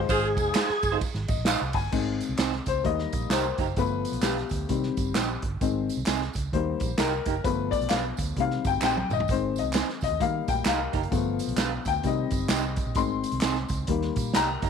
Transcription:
Already playing: G#2 D#4 F4 G#4 C5
0.09 G#1 F4 G#4 C5, kick, ride, tambourine
0.37 F1, kick, ride, tambourine
0.54 G#3 D#4 F4 C5, snare, clap, ride, tambourine
0.69 muted fingered electric bass stroke, snare
0.83 G1, kick, ride, tambourine
0.92 G#3 D#4 F4 C5
1.01 kick, ride, tambourine
1.14 G#1, snare
1.28 G#1 D#5, kick, ride, tambourine
1.37 A#1
1.45 G#3 D#4 F4 C5 F5, snare, clap, ride, tambourine
1.61 C2
1.73 G1 G#5, kick, open hi-hat, ride, tambourine
1.91 G#1 D#3 G#3 C4, kick, crash, tambourine
2.20 closed hi-hat, tambourine
2.29 C2
2.37 C2 C4 D#4 G#4 C5, snare, clap, closed hi-hat, tambourine
2.52 snare
2.66 C#2 C5, kick, closed hi-hat, tambourine
2.82 D#2 D#3 G3 A#3 D#5, kick, closed hi-hat
2.99 snare
3.13 A#1, kick, closed hi-hat, tambourine
3.30 C2 A#3 D#4 G4 A#4 C5, snare, clap, closed hi-hat, tambourine
3.58 F#1 A#3 D#4 G4 A#4, kick, closed hi-hat, tambourine
3.76 G1 F3 A3 B3 B4, kick, closed hi-hat, tambourine
4.05 closed hi-hat, tambourine
4.12 B1, closed hi-hat
4.21 B1 G3 D4 F4 G4 B4, snare, clap, closed hi-hat, tambourine
4.37 snare
4.49 D2, kick, closed hi-hat, tambourine
4.68 C3 D#3 G3 C4, kick, closed hi-hat, tambourine
4.83 snare
4.97 G1, kick, closed hi-hat, tambourine
5.15 A#1 C4 D#4 G4 C5, snare, clap, closed hi-hat, tambourine
5.42 G1, kick, closed hi-hat
5.61 G#1 D#3 G#3 C4, kick, closed hi-hat, tambourine
5.89 closed hi-hat, tambourine
5.97 C2
6.06 C2 C4 D#4 G#4 C5, snare, clap, closed hi-hat, tambourine
6.21 snare
6.33 C#2, kick, closed hi-hat, tambourine
6.53 D#2 D#3 G3 A#3 C5, kick, closed hi-hat
6.80 A#1, kick, closed hi-hat, tambourine
6.98 C2 A#3 D#4 G4 A#4, snare, clap, closed hi-hat, tambourine
7.26 F#1 A#3 D#4 G4 A#4, kick, closed hi-hat, tambourine
7.44 G1 F3 A3 B3 B4, kick, closed hi-hat, tambourine
7.71 D5, kick, closed hi-hat, tambourine
7.81 B1, closed hi-hat
7.89 B1 G3 D4 F4 B4 F5, snare, clap, closed hi-hat, tambourine
8.17 D2, kick, closed hi-hat, tambourine
8.37 C3 D#3 G3 C4 F5, kick, closed hi-hat
8.50 snare
8.64 G1 G5, kick, closed hi-hat, tambourine
8.82 A#1 C4 D#4 G4 C5 G5, snare, clap, tambourine
8.97 high tom
9.09 G1 D#5, mid tom, tambourine
9.20 floor tom
9.28 G#1 D#3 G#3 C4 C5, kick, closed hi-hat, tambourine
9.56 D#5, closed hi-hat, tambourine
9.63 C2
9.73 C4 D#4 G#4 C5, snare, clap, closed hi-hat, tambourine
9.89 snare
10.01 C2 D#5, kick, closed hi-hat, tambourine
10.09 D#2
10.20 D#3 G3 A#3 F5, kick, closed hi-hat, tambourine
10.48 A#1 G5, kick, closed hi-hat, tambourine
10.65 C2 A#3 D#4 G4 A#4 F5, snare, clap, closed hi-hat, tambourine
10.93 F#1 A#3 D#4 G4 A#4, kick, closed hi-hat, tambourine
11.03 closed hi-hat
11.11 G1 F3 A3 B3, kick, closed hi-hat, tambourine
11.39 closed hi-hat, tambourine
11.47 B1, closed hi-hat
11.57 G3 D4 F4 B4, snare, clap, closed hi-hat, tambourine
11.85 D2 G5, kick, closed hi-hat, tambourine
12.03 C3 D#3 G3 C4 D#5, kick, closed hi-hat, tambourine
12.31 G1, kick, closed hi-hat, tambourine
12.49 C2 C4 D#4 G4 C5, snare, clap, closed hi-hat, tambourine
12.76 kick, closed hi-hat, tambourine
12.86 A#1
12.95 G#1 D#3 G#3 C4 C6, kick, closed hi-hat, tambourine
13.24 closed hi-hat, tambourine
13.32 C2, closed hi-hat
13.41 C2 C4 D#4 G#4 C5, snare, clap, closed hi-hat, tambourine
13.55 snare
13.69 C#2, kick, closed hi-hat, tambourine
13.87 D#2 D#3 G3 A#3, kick, closed hi-hat
14.01 snare
14.16 A#1, kick, closed hi-hat, tambourine
14.34 C2 A#3 D#4 G4 A#4 A#5, snare, clap, closed hi-hat, tambourine
14.62 F#1 A#3 D#4 G4 A#4, kick, closed hi-hat, tambourine

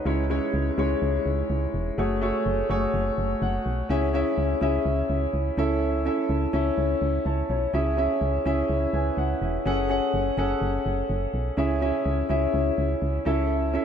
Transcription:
Already playing: D#4 B4
0.05 C#2 G#3 C#4 E4 C#5
0.30 G#3 C#4 E4 C#5
0.54 C#2
0.78 C#2 G#3 C#4 E4 C#5
1.02 C#2
1.26 C#2
1.50 C#2
1.74 E1
1.98 F#1 A3 F#4 G#4 C#5
2.21 A3 F#4 G#4 C#5
2.46 F#1
2.69 F#1 A3 F#4 G#4 C#5
2.93 F#1
3.18 F#1
3.42 F#1 F#5
3.66 B1
3.89 C#2 C#4 E4 G#4 E5
4.14 C#4 E4 G#4 E5
4.38 C#2
4.61 C#2 C#4 E4 G#4 E5
4.85 C#2
5.09 C#2
5.33 C#2
5.57 C#2 C#4 E4 A4 E5
6.05 C#4 E4 A4 E5
6.29 C#2
6.53 C#2 C#4 E4 A4 E5
6.78 C#2
7.01 C#2
7.25 C#2 C#5 A5
7.49 B1 E4 C#5
7.74 C#2 C#4 E4 G#4 E5
7.97 C#4 E4 G#4 E5
8.21 C#2
8.45 C#2 C#4 E4 G#4 E5
8.69 C#2
8.93 C#2 B4 G#5
9.17 C#2 F#5
9.41 E1 G#4 E5
9.65 F#1 C#4 G#4 A4 F#5
9.89 C#4 G#4 A4 F#5
10.13 F#1
10.37 F#1 C#4 G#4 A4 F#5
10.61 F#1
10.86 F#1
11.09 F#1
11.33 B1
11.57 C#2 C#4 E4 G#4 E5
11.81 C#4 E4 G#4 E5
12.06 C#2
12.29 C#2 C#4 E4 G#4 E5
12.54 C#2
12.78 C#2
13.02 C#2
13.25 C#2 C#4 E4 A4 E5
13.73 C#4 E4 A4 E5

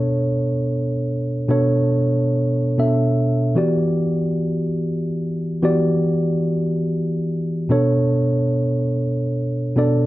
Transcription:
Already playing: B2 B3 D4 A4 C#5
1.49 B2 B3 D4 A4 C#5
2.78 B2 B3 D4 A4 E5
3.55 E3 B3 F#4 G4 D5
5.62 E3 B3 F#4 G4 D5
7.69 B2 B3 D4 A4 C#5
9.76 B2 B3 D4 A4 D5

